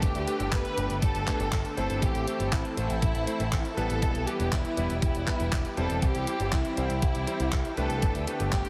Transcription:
Already playing: A3 D4 G4 B4
0.02 G1 D3 A3 B3 G4, kick, closed hi-hat
0.15 D2, closed hi-hat
0.27 A3 D4 G4 B4, closed hi-hat
0.40 G1, closed hi-hat
0.52 G1 B4, kick, clap, closed hi-hat
0.65 closed hi-hat
0.77 G1 A3 D4 G4 B4, closed hi-hat
0.90 G1, closed hi-hat
1.02 G1 A4, kick, closed hi-hat
1.15 G1, closed hi-hat
1.27 A3 D4 G4 B4, kick, clap, closed hi-hat
1.40 G1, closed hi-hat
1.52 G1, kick, clap, closed hi-hat
1.65 closed hi-hat
1.77 G1 A3 C4 E4 A4 C5, closed hi-hat
1.90 G1, closed hi-hat
2.02 A1 E3 C4 G4 A4, kick, closed hi-hat
2.15 A1, closed hi-hat
2.27 A3 C4 E4 C5, closed hi-hat
2.40 G1, closed hi-hat
2.52 A1 E4, kick, clap, closed hi-hat
2.65 closed hi-hat
2.77 A1 A3 C4 E4 C5, closed hi-hat
2.90 A1, closed hi-hat
3.02 A1, kick, closed hi-hat
3.15 A1, closed hi-hat
3.27 A3 C4 E4 C5, closed hi-hat
3.40 A1, closed hi-hat
3.52 A1, kick, clap, closed hi-hat
3.65 closed hi-hat
3.77 A1 G3 B3 E4 A4 B4, closed hi-hat
3.90 A1, closed hi-hat
4.02 E1 G3 B3 G4, kick, closed hi-hat
4.15 B1, closed hi-hat
4.27 G3 B3 E4 G4 B4, closed hi-hat
4.40 E1, closed hi-hat
4.52 E1 E4, kick, clap, closed hi-hat
4.65 closed hi-hat
4.77 E1 G3 B3 E4 B4, closed hi-hat
4.90 E1, closed hi-hat
5.02 E1 E4, kick, closed hi-hat
5.15 E1, closed hi-hat
5.27 G3 B3 E4 B4, kick, clap, closed hi-hat
5.40 E1, closed hi-hat
5.52 E1, kick, clap, closed hi-hat
5.65 closed hi-hat
5.77 E1 G3 C4 E4 A4 C5, closed hi-hat
5.90 E1, closed hi-hat
6.02 C2 G3 C4 G4, kick, closed hi-hat
6.15 C2, closed hi-hat
6.27 G3 C4 E4 C5, closed hi-hat
6.40 G1, closed hi-hat
6.52 C2 E4, kick, clap, closed hi-hat
6.65 closed hi-hat
6.77 C2 G3 C4 E4 C5, closed hi-hat
6.90 C2, closed hi-hat
7.02 C2, kick, closed hi-hat
7.15 C2, closed hi-hat
7.27 G3 C4 E4 C5, closed hi-hat
7.40 C2, closed hi-hat
7.52 C2, kick, clap, closed hi-hat
7.65 closed hi-hat
7.77 C2 A3 D4 G4 A4 B4, closed hi-hat
7.90 C2, closed hi-hat
8.02 G1 D3 A3 B3, kick, closed hi-hat
8.15 D2, closed hi-hat
8.27 A3 D4 G4 B4, closed hi-hat
8.40 G1, closed hi-hat
8.52 G1 G4, kick, clap, closed hi-hat
8.65 closed hi-hat

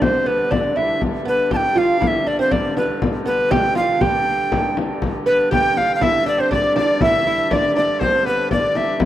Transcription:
Already playing: G2 D3
0.02 C4 C5, frame drum
0.26 B3 B4
0.51 D4 D5, frame drum
0.76 E4 E5, frame drum
0.99 G2 D3, frame drum
1.25 B3 B4, frame drum
1.51 G4 A5, frame drum
1.57 G5
1.75 F4 F5, frame drum
2.00 E4 F5, frame drum
2.07 E5
2.27 D4 D5, frame drum
2.39 C4 C5
2.51 D4 D5, frame drum
2.77 B3 B4, frame drum
3.02 frame drum
3.26 B3 B4, frame drum
3.51 G4 G5, frame drum
3.75 F4 F5, frame drum
4.01 G4 G5, frame drum
4.52 frame drum
4.77 frame drum
5.02 G2 D3, frame drum
5.26 B3 B4, frame drum
5.51 G4 G5, frame drum
5.77 F5, frame drum
5.95 F5
6.01 E4 E5, frame drum
6.26 D4 D5, frame drum
6.38 C4 C5
6.51 D4 D5, frame drum
6.75 D4 D5, frame drum
7.01 E4 E5, frame drum
7.26 E4 E5, frame drum
7.50 D4 D5, frame drum
7.75 D4 D5, frame drum
8.00 C4 C5, frame drum
8.25 B3 B4
8.51 D4 D5, frame drum
8.75 E5, frame drum
9.00 G2 D3, frame drum

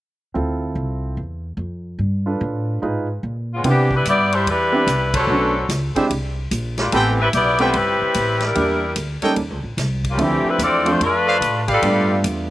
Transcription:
0.34 D2 C4 E4 F4 A4
0.75 C2
1.17 E2
1.57 F2
1.99 G2
2.26 D4 F4 A4 B4
2.41 A2
2.82 G#2 D#4 F4 G#4 B4
3.23 A#2
3.53 G#3 B3 C#4 F4
3.64 C3 E3 B3 C4 D4 E4 G4, ride
3.68 D4
3.91 G3 D4 E4 B4, kick
4.05 G2 B3 E4 G4 D5, hi-hat pedal, ride
4.32 G3 D4 E4 C5, ride
4.46 E2 G3 D4 E4 B4, ride
4.72 B3 C4 D4 E4 G4
4.86 C2, hi-hat pedal, ride
5.14 F#3 C#4 D4 A4 B4 C5 C#5, kick, ride
5.27 B1 A3 B3 C#4 D4 F#4
5.69 C#2, snare, hi-hat pedal, ride
5.96 G#3 C4 D4 E4 G4 G#4 C5 D5 E5, kick, ride
6.10 C2, ride
6.51 A#1, hi-hat pedal, ride
6.78 G3 A#3 D4 F4, snare, ride
6.92 A1 E3 A3 B3 C4 E4 G4 A4 B4 C5 G5, ride
7.20 G3 C4 E4 B4
7.33 B1 B3 E4 G4 D5, hi-hat pedal, ride
7.58 G3 A3 B3 C4 E4 G4 A4 B4 C5 G5, ride
7.73 G1 G3 C4 E4 B4, ride
8.01 muted upright bass stroke
8.14 A1, hi-hat pedal, ride
8.40 G3 D4 E4 A#4, snare, ride
8.55 E2 G3 A#3 D4 E4 G4, ride
8.96 D2, hi-hat pedal, ride
9.22 G3 A#3 C#4 D#4 A4 C#5 D#5 G5, muted upright bass stroke, ride
9.36 D#2, ride
9.50 C#2
9.64 A#1
9.77 C2, snare, hi-hat pedal, ride
10.04 kick, ride
10.09 G3 A#3 C#4 F4
10.17 D2 F3 A3 C4 D4 E4 G4, ride
10.22 E3 C4
10.44 muted upright bass stroke
10.48 G3 C4 E4 B4
10.59 E2 C4 F4 A4 D5, hi-hat pedal, ride
10.85 F3 A3 C4 D4 F4 C5, ride
11.00 F2 A3 D4 F4 B4, ride
11.27 A4 C5 D5 F5
11.41 A2, hi-hat pedal, ride
11.68 G3 D4 F4 G4 A4 B4 D5 F5, kick, ride
11.82 G2 G3 A3 B3 D4 F4, ride
12.24 E2, hi-hat pedal, ride

